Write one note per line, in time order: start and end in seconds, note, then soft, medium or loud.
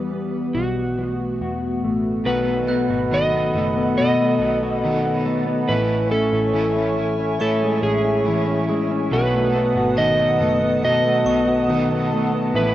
0.00 0.51 E2 loud
0.00 0.63 E2 medium
0.00 2.23 E3 medium
0.00 0.54 G3 medium
0.00 0.64 G3 medium
0.00 0.12 B3 soft
0.00 0.51 B3 medium
0.00 0.64 E4 medium
0.00 0.53 G4 medium
0.00 0.60 B4 loud
0.00 0.11 D#6 medium
0.12 0.98 B3 soft
0.55 0.96 B1 medium
0.55 2.25 B2 medium
0.55 2.25 A3 medium
0.55 2.25 B3 medium
0.55 1.79 F#4 medium
0.55 2.25 F#4 medium
0.97 1.38 B1 medium
0.97 2.51 B3 soft
1.41 1.81 E2 medium
1.41 2.26 F#4 medium
1.83 2.24 A1 medium
1.83 2.48 A3 medium
2.24 2.87 B1 loud
2.24 2.68 B2 medium
2.24 3.97 B2 medium
2.24 2.68 D#3 medium
2.24 2.69 F#3 medium
2.24 2.69 B3 medium
2.24 2.68 D#4 medium
2.24 2.89 F#4 medium
2.24 5.65 A4 medium
2.24 2.66 A4 medium
2.24 3.14 B4 loud
2.24 5.66 D#5 medium
2.24 5.65 F#5 medium
2.24 5.66 B5 medium
2.48 3.55 A3 medium
2.67 3.32 B3 medium
2.67 3.12 D#4 medium
2.67 3.11 A4 soft
2.67 3.54 F#6 medium
2.71 3.11 F#3 soft
2.71 3.12 B3 soft
2.90 3.51 G#1 medium
2.90 3.97 F#4 medium
3.11 3.54 B2 medium
3.11 4.83 D#3 medium
3.11 3.54 D#3 medium
3.11 3.55 F#3 medium
3.11 3.55 B3 medium
3.11 3.54 D#4 medium
3.11 3.52 A4 medium
3.11 3.96 D#5 loud
3.33 3.75 B3 medium
3.53 4.16 F#1 medium
3.53 4.20 A3 medium
3.53 3.97 B3 soft
3.53 3.98 D#4 medium
3.53 3.97 A4 medium
3.58 3.95 F#3 soft
3.76 4.40 B3 medium
3.96 5.68 B2 medium
3.96 4.40 F#3 medium
3.96 4.41 B3 medium
3.96 4.62 F#4 medium
3.96 5.14 D#5 loud
4.00 4.40 D#4 medium
4.00 4.38 A4 medium
4.20 5.25 A3 medium
4.39 5.65 B1 medium
4.39 5.04 B3 medium
4.39 4.84 D#4 soft
4.39 4.83 A4 medium
4.43 4.82 F#3 soft
4.43 4.83 B3 soft
4.63 5.69 F#4 medium
4.82 5.25 B2 medium
4.82 5.26 D#3 medium
4.82 5.78 D#3 medium
4.82 5.26 F#3 loud
4.82 5.27 B3 loud
4.82 5.26 D#4 loud
4.86 5.24 A4 medium
5.05 5.46 B3 medium
5.14 5.74 C#5 loud
5.25 7.62 A3 medium
5.25 5.70 B3 medium
5.25 5.70 D#4 medium
5.25 5.68 A4 medium
5.31 5.71 F#3 soft
5.47 5.77 B3 medium
5.68 6.30 A1 loud
5.68 6.11 A2 medium
5.68 7.39 A2 medium
5.68 6.12 E3 medium
5.68 6.12 C#4 medium
5.68 6.32 E4 medium
5.68 6.10 E4 medium
5.68 6.09 B4 loud
5.68 9.09 C#5 medium
5.68 9.09 E5 medium
5.68 9.09 G#5 medium
5.68 9.08 C#6 medium
5.72 6.13 A4 loud
6.11 6.75 C#4 medium
6.11 6.54 C#4 soft
6.11 6.54 E4 soft
6.11 7.40 A4 loud
6.33 6.53 A1 medium
6.33 7.40 E4 medium
6.53 7.79 A1 loud
6.53 6.97 A2 medium
6.53 6.97 E3 loud
6.53 8.26 E3 medium
6.53 6.98 C#4 medium
6.53 6.97 E4 loud
6.53 6.99 A4 medium
6.76 7.18 C#4 medium
6.98 7.38 C#4 soft
6.98 7.40 E4 medium
7.19 7.82 C#4 medium
7.39 9.12 A2 medium
7.39 7.83 C#4 medium
7.39 7.82 E4 medium
7.39 8.03 E4 medium
7.39 7.83 A4 loud
7.39 7.84 A4 medium
7.39 8.25 C#6 medium
7.63 8.68 G#3 medium
7.83 9.08 A1 medium
7.83 8.28 G#3 soft
7.83 8.46 C#4 medium
7.83 8.25 C#4 medium
7.83 8.26 E4 soft
7.83 8.65 G#4 medium
8.05 9.12 E4 medium
8.24 8.68 A2 medium
8.24 8.68 E3 medium
8.24 9.21 E3 medium
8.24 8.69 C#4 loud
8.24 8.67 E4 loud
8.48 8.90 C#4 medium
8.68 9.21 G#3 medium
8.68 9.12 G#3 soft
8.68 9.12 C#4 soft
8.68 9.12 E4 medium
8.91 9.21 C#4 medium
9.10 9.73 B1 loud
9.10 9.54 B2 medium
9.10 10.83 B2 medium
9.10 9.54 D#3 medium
9.10 9.55 F#3 medium
9.10 9.55 B3 medium
9.10 9.54 D#4 medium
9.10 9.76 F#4 medium
9.10 9.51 A4 medium
9.10 12.52 B4 medium
9.10 10.01 B4 loud
9.10 12.52 F#5 medium
9.10 12.75 A5 medium
9.10 12.52 D#6 medium
9.34 10.41 A3 medium
9.52 10.18 B3 medium
9.52 9.97 D#4 medium
9.52 9.96 A4 medium
9.57 9.96 F#3 soft
9.57 9.96 B3 soft
9.75 10.37 G#1 medium
9.75 10.83 F#4 medium
9.95 10.39 B2 medium
9.95 10.40 D#3 medium
9.95 11.68 D#3 medium
9.95 10.40 F#3 medium
9.95 10.40 B3 medium
9.95 10.39 D#4 medium
9.95 10.83 D#5 loud
9.95 10.82 A5 medium
9.99 10.37 A4 medium
10.20 10.61 B3 medium
10.38 11.01 F#1 loud
10.38 11.05 A3 medium
10.38 10.82 B3 soft
10.38 10.83 D#4 medium
10.38 10.82 A4 medium
10.44 10.80 F#3 soft
10.62 11.25 B3 medium
10.81 12.54 B2 medium
10.81 11.25 F#3 medium
10.81 11.26 B3 medium
10.81 11.46 F#4 medium
10.81 12.61 D#5 loud
10.86 11.26 D#4 medium
10.86 11.23 A4 medium
11.05 12.13 A3 medium
11.24 12.50 B1 medium
11.24 11.89 B3 medium
11.24 11.69 B3 soft
11.24 11.70 D#4 medium
11.24 11.68 A4 medium
11.24 12.11 C#6 medium
11.30 11.68 F#3 soft
11.48 12.55 F#4 medium
11.67 12.11 B2 medium
11.67 12.11 D#3 medium
11.67 12.64 D#3 medium
11.67 12.12 F#3 medium
11.67 12.12 B3 loud
11.67 12.11 D#4 loud
11.67 12.08 A4 loud
11.91 12.33 B3 medium
12.10 12.75 A3 medium
12.10 12.55 D#4 medium
12.10 12.54 A4 medium
12.14 12.55 F#3 medium
12.14 12.56 B3 medium
12.34 12.64 B3 medium
12.53 12.75 A1 loud
12.53 12.75 A2 medium
12.53 12.75 E3 medium
12.53 12.75 G#3 medium
12.53 12.75 C#4 medium
12.53 12.75 E4 medium
12.53 12.75 B4 loud
12.53 12.75 C#5 medium
12.53 12.75 G#5 medium
12.53 12.75 E6 medium